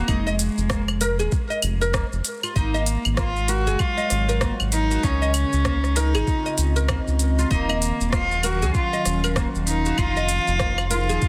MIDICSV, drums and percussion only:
0, 0, Header, 1, 2, 480
1, 0, Start_track
1, 0, Tempo, 618557
1, 67, Time_signature, 4, 2, 24, 8
1, 8755, End_track
2, 0, Start_track
2, 0, Title_t, "Drums"
2, 63, Note_on_c, 9, 75, 81
2, 65, Note_on_c, 9, 36, 104
2, 66, Note_on_c, 9, 82, 43
2, 141, Note_off_c, 9, 75, 0
2, 143, Note_off_c, 9, 36, 0
2, 143, Note_off_c, 9, 82, 0
2, 210, Note_on_c, 9, 82, 22
2, 288, Note_off_c, 9, 82, 0
2, 304, Note_on_c, 9, 46, 96
2, 306, Note_on_c, 9, 82, 80
2, 381, Note_off_c, 9, 46, 0
2, 384, Note_off_c, 9, 82, 0
2, 448, Note_on_c, 9, 82, 32
2, 526, Note_off_c, 9, 82, 0
2, 541, Note_on_c, 9, 37, 103
2, 543, Note_on_c, 9, 82, 44
2, 546, Note_on_c, 9, 36, 94
2, 618, Note_off_c, 9, 37, 0
2, 621, Note_off_c, 9, 82, 0
2, 623, Note_off_c, 9, 36, 0
2, 685, Note_on_c, 9, 37, 32
2, 685, Note_on_c, 9, 75, 78
2, 688, Note_on_c, 9, 82, 23
2, 763, Note_off_c, 9, 37, 0
2, 763, Note_off_c, 9, 75, 0
2, 766, Note_off_c, 9, 82, 0
2, 782, Note_on_c, 9, 46, 90
2, 785, Note_on_c, 9, 82, 71
2, 860, Note_off_c, 9, 46, 0
2, 862, Note_off_c, 9, 82, 0
2, 927, Note_on_c, 9, 82, 32
2, 1005, Note_off_c, 9, 82, 0
2, 1023, Note_on_c, 9, 82, 42
2, 1026, Note_on_c, 9, 36, 108
2, 1101, Note_off_c, 9, 82, 0
2, 1104, Note_off_c, 9, 36, 0
2, 1168, Note_on_c, 9, 82, 22
2, 1245, Note_off_c, 9, 82, 0
2, 1260, Note_on_c, 9, 46, 99
2, 1260, Note_on_c, 9, 75, 88
2, 1263, Note_on_c, 9, 82, 76
2, 1338, Note_off_c, 9, 46, 0
2, 1338, Note_off_c, 9, 75, 0
2, 1341, Note_off_c, 9, 82, 0
2, 1409, Note_on_c, 9, 82, 31
2, 1487, Note_off_c, 9, 82, 0
2, 1504, Note_on_c, 9, 37, 99
2, 1506, Note_on_c, 9, 36, 97
2, 1507, Note_on_c, 9, 82, 42
2, 1582, Note_off_c, 9, 37, 0
2, 1583, Note_off_c, 9, 36, 0
2, 1585, Note_off_c, 9, 82, 0
2, 1650, Note_on_c, 9, 82, 21
2, 1728, Note_off_c, 9, 82, 0
2, 1742, Note_on_c, 9, 46, 88
2, 1745, Note_on_c, 9, 82, 70
2, 1820, Note_off_c, 9, 46, 0
2, 1823, Note_off_c, 9, 82, 0
2, 1889, Note_on_c, 9, 75, 75
2, 1891, Note_on_c, 9, 82, 32
2, 1966, Note_off_c, 9, 75, 0
2, 1969, Note_off_c, 9, 82, 0
2, 1986, Note_on_c, 9, 36, 99
2, 1988, Note_on_c, 9, 82, 43
2, 2064, Note_off_c, 9, 36, 0
2, 2065, Note_off_c, 9, 82, 0
2, 2131, Note_on_c, 9, 82, 21
2, 2208, Note_off_c, 9, 82, 0
2, 2223, Note_on_c, 9, 46, 101
2, 2225, Note_on_c, 9, 82, 81
2, 2300, Note_off_c, 9, 46, 0
2, 2303, Note_off_c, 9, 82, 0
2, 2368, Note_on_c, 9, 75, 78
2, 2371, Note_on_c, 9, 82, 31
2, 2445, Note_off_c, 9, 75, 0
2, 2448, Note_off_c, 9, 82, 0
2, 2461, Note_on_c, 9, 37, 104
2, 2464, Note_on_c, 9, 82, 44
2, 2467, Note_on_c, 9, 36, 104
2, 2539, Note_off_c, 9, 37, 0
2, 2542, Note_off_c, 9, 82, 0
2, 2544, Note_off_c, 9, 36, 0
2, 2609, Note_on_c, 9, 82, 23
2, 2687, Note_off_c, 9, 82, 0
2, 2703, Note_on_c, 9, 46, 94
2, 2705, Note_on_c, 9, 82, 77
2, 2780, Note_off_c, 9, 46, 0
2, 2783, Note_off_c, 9, 82, 0
2, 2848, Note_on_c, 9, 82, 31
2, 2926, Note_off_c, 9, 82, 0
2, 2942, Note_on_c, 9, 75, 74
2, 2945, Note_on_c, 9, 82, 44
2, 2947, Note_on_c, 9, 36, 111
2, 3020, Note_off_c, 9, 75, 0
2, 3023, Note_off_c, 9, 82, 0
2, 3025, Note_off_c, 9, 36, 0
2, 3087, Note_on_c, 9, 82, 24
2, 3164, Note_off_c, 9, 82, 0
2, 3183, Note_on_c, 9, 37, 33
2, 3183, Note_on_c, 9, 46, 95
2, 3186, Note_on_c, 9, 82, 82
2, 3261, Note_off_c, 9, 37, 0
2, 3261, Note_off_c, 9, 46, 0
2, 3264, Note_off_c, 9, 82, 0
2, 3329, Note_on_c, 9, 82, 33
2, 3407, Note_off_c, 9, 82, 0
2, 3422, Note_on_c, 9, 37, 105
2, 3425, Note_on_c, 9, 82, 44
2, 3428, Note_on_c, 9, 36, 99
2, 3500, Note_off_c, 9, 37, 0
2, 3502, Note_off_c, 9, 82, 0
2, 3505, Note_off_c, 9, 36, 0
2, 3569, Note_on_c, 9, 75, 72
2, 3571, Note_on_c, 9, 82, 22
2, 3646, Note_off_c, 9, 75, 0
2, 3649, Note_off_c, 9, 82, 0
2, 3662, Note_on_c, 9, 46, 89
2, 3665, Note_on_c, 9, 82, 71
2, 3740, Note_off_c, 9, 46, 0
2, 3742, Note_off_c, 9, 82, 0
2, 3810, Note_on_c, 9, 82, 33
2, 3887, Note_off_c, 9, 82, 0
2, 3907, Note_on_c, 9, 82, 47
2, 3909, Note_on_c, 9, 36, 109
2, 3985, Note_off_c, 9, 82, 0
2, 3986, Note_off_c, 9, 36, 0
2, 4052, Note_on_c, 9, 82, 23
2, 4130, Note_off_c, 9, 82, 0
2, 4143, Note_on_c, 9, 46, 93
2, 4143, Note_on_c, 9, 75, 77
2, 4146, Note_on_c, 9, 82, 80
2, 4221, Note_off_c, 9, 46, 0
2, 4221, Note_off_c, 9, 75, 0
2, 4223, Note_off_c, 9, 82, 0
2, 4289, Note_on_c, 9, 82, 34
2, 4367, Note_off_c, 9, 82, 0
2, 4384, Note_on_c, 9, 37, 104
2, 4386, Note_on_c, 9, 82, 47
2, 4389, Note_on_c, 9, 36, 102
2, 4461, Note_off_c, 9, 37, 0
2, 4464, Note_off_c, 9, 82, 0
2, 4467, Note_off_c, 9, 36, 0
2, 4531, Note_on_c, 9, 37, 34
2, 4534, Note_on_c, 9, 82, 24
2, 4609, Note_off_c, 9, 37, 0
2, 4611, Note_off_c, 9, 82, 0
2, 4625, Note_on_c, 9, 46, 86
2, 4628, Note_on_c, 9, 82, 85
2, 4703, Note_off_c, 9, 46, 0
2, 4706, Note_off_c, 9, 82, 0
2, 4770, Note_on_c, 9, 75, 74
2, 4773, Note_on_c, 9, 82, 32
2, 4848, Note_off_c, 9, 75, 0
2, 4850, Note_off_c, 9, 82, 0
2, 4869, Note_on_c, 9, 36, 115
2, 4869, Note_on_c, 9, 82, 45
2, 4947, Note_off_c, 9, 36, 0
2, 4947, Note_off_c, 9, 82, 0
2, 5012, Note_on_c, 9, 82, 24
2, 5089, Note_off_c, 9, 82, 0
2, 5103, Note_on_c, 9, 46, 98
2, 5106, Note_on_c, 9, 82, 81
2, 5181, Note_off_c, 9, 46, 0
2, 5184, Note_off_c, 9, 82, 0
2, 5248, Note_on_c, 9, 82, 35
2, 5325, Note_off_c, 9, 82, 0
2, 5343, Note_on_c, 9, 37, 100
2, 5343, Note_on_c, 9, 75, 72
2, 5345, Note_on_c, 9, 82, 45
2, 5349, Note_on_c, 9, 36, 103
2, 5420, Note_off_c, 9, 37, 0
2, 5420, Note_off_c, 9, 75, 0
2, 5423, Note_off_c, 9, 82, 0
2, 5427, Note_off_c, 9, 36, 0
2, 5490, Note_on_c, 9, 82, 22
2, 5568, Note_off_c, 9, 82, 0
2, 5582, Note_on_c, 9, 46, 79
2, 5585, Note_on_c, 9, 82, 73
2, 5660, Note_off_c, 9, 46, 0
2, 5662, Note_off_c, 9, 82, 0
2, 5733, Note_on_c, 9, 82, 35
2, 5811, Note_off_c, 9, 82, 0
2, 5828, Note_on_c, 9, 36, 105
2, 5828, Note_on_c, 9, 82, 45
2, 5906, Note_off_c, 9, 36, 0
2, 5906, Note_off_c, 9, 82, 0
2, 5972, Note_on_c, 9, 75, 74
2, 5975, Note_on_c, 9, 82, 23
2, 6050, Note_off_c, 9, 75, 0
2, 6052, Note_off_c, 9, 82, 0
2, 6067, Note_on_c, 9, 46, 93
2, 6070, Note_on_c, 9, 82, 82
2, 6145, Note_off_c, 9, 46, 0
2, 6147, Note_off_c, 9, 82, 0
2, 6214, Note_on_c, 9, 82, 34
2, 6291, Note_off_c, 9, 82, 0
2, 6305, Note_on_c, 9, 37, 103
2, 6307, Note_on_c, 9, 36, 110
2, 6308, Note_on_c, 9, 82, 47
2, 6383, Note_off_c, 9, 37, 0
2, 6385, Note_off_c, 9, 36, 0
2, 6386, Note_off_c, 9, 82, 0
2, 6450, Note_on_c, 9, 82, 24
2, 6528, Note_off_c, 9, 82, 0
2, 6544, Note_on_c, 9, 46, 89
2, 6544, Note_on_c, 9, 75, 76
2, 6547, Note_on_c, 9, 82, 87
2, 6622, Note_off_c, 9, 46, 0
2, 6622, Note_off_c, 9, 75, 0
2, 6625, Note_off_c, 9, 82, 0
2, 6691, Note_on_c, 9, 82, 34
2, 6768, Note_off_c, 9, 82, 0
2, 6787, Note_on_c, 9, 82, 45
2, 6788, Note_on_c, 9, 36, 111
2, 6864, Note_off_c, 9, 82, 0
2, 6865, Note_off_c, 9, 36, 0
2, 6931, Note_on_c, 9, 82, 24
2, 7009, Note_off_c, 9, 82, 0
2, 7026, Note_on_c, 9, 37, 33
2, 7026, Note_on_c, 9, 46, 90
2, 7029, Note_on_c, 9, 82, 87
2, 7104, Note_off_c, 9, 37, 0
2, 7104, Note_off_c, 9, 46, 0
2, 7107, Note_off_c, 9, 82, 0
2, 7169, Note_on_c, 9, 75, 75
2, 7172, Note_on_c, 9, 82, 35
2, 7247, Note_off_c, 9, 75, 0
2, 7249, Note_off_c, 9, 82, 0
2, 7263, Note_on_c, 9, 37, 100
2, 7266, Note_on_c, 9, 82, 49
2, 7267, Note_on_c, 9, 36, 108
2, 7341, Note_off_c, 9, 37, 0
2, 7343, Note_off_c, 9, 82, 0
2, 7345, Note_off_c, 9, 36, 0
2, 7411, Note_on_c, 9, 82, 22
2, 7489, Note_off_c, 9, 82, 0
2, 7503, Note_on_c, 9, 46, 80
2, 7506, Note_on_c, 9, 82, 78
2, 7581, Note_off_c, 9, 46, 0
2, 7583, Note_off_c, 9, 82, 0
2, 7648, Note_on_c, 9, 82, 35
2, 7726, Note_off_c, 9, 82, 0
2, 7743, Note_on_c, 9, 75, 76
2, 7745, Note_on_c, 9, 82, 43
2, 7747, Note_on_c, 9, 36, 105
2, 7820, Note_off_c, 9, 75, 0
2, 7823, Note_off_c, 9, 82, 0
2, 7825, Note_off_c, 9, 36, 0
2, 7887, Note_on_c, 9, 82, 22
2, 7965, Note_off_c, 9, 82, 0
2, 7981, Note_on_c, 9, 46, 84
2, 7984, Note_on_c, 9, 82, 84
2, 8059, Note_off_c, 9, 46, 0
2, 8062, Note_off_c, 9, 82, 0
2, 8127, Note_on_c, 9, 82, 33
2, 8205, Note_off_c, 9, 82, 0
2, 8222, Note_on_c, 9, 37, 102
2, 8224, Note_on_c, 9, 82, 46
2, 8228, Note_on_c, 9, 36, 105
2, 8299, Note_off_c, 9, 37, 0
2, 8302, Note_off_c, 9, 82, 0
2, 8305, Note_off_c, 9, 36, 0
2, 8366, Note_on_c, 9, 37, 33
2, 8366, Note_on_c, 9, 75, 82
2, 8368, Note_on_c, 9, 82, 22
2, 8443, Note_off_c, 9, 37, 0
2, 8443, Note_off_c, 9, 75, 0
2, 8446, Note_off_c, 9, 82, 0
2, 8463, Note_on_c, 9, 46, 84
2, 8466, Note_on_c, 9, 82, 80
2, 8541, Note_off_c, 9, 46, 0
2, 8543, Note_off_c, 9, 82, 0
2, 8609, Note_on_c, 9, 82, 35
2, 8687, Note_off_c, 9, 82, 0
2, 8705, Note_on_c, 9, 82, 44
2, 8708, Note_on_c, 9, 36, 112
2, 8755, Note_off_c, 9, 36, 0
2, 8755, Note_off_c, 9, 82, 0
2, 8755, End_track
0, 0, End_of_file